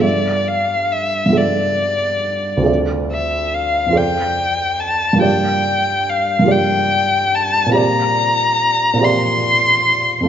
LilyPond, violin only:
\new Staff \with { instrumentName = "Violin" } { \time 6/8 \key g \dorian \tempo 4. = 47 d''8 f''8 e''8 d''4. | r8 e''8 f''8 g''4 a''8 | g''4 f''8 g''4 a''8 | bes''4. c'''4. | }